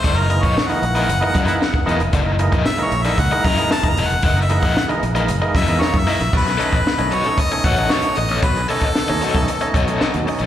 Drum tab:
CC |----------------|----------------|----------------|x---------------|
HH |xxxx-xxxx-xx--xx|x-xx-xxxxxxx-xxx|xxxx-xxxx-xx-xox|-xxx-xxxxxxx-xox|
SD |----o-------o---|----o-------o---|-o--o-------o--o|-o--o-------o--o|
BD |o--o------o--o--|o--o----o-o--o--|o--o------o--o--|o--o----o-o-----|

CC |----------------|
HH |xxxx-xxxxxxx-xox|
SD |-o--o-------o---|
BD |o--o---o--o-----|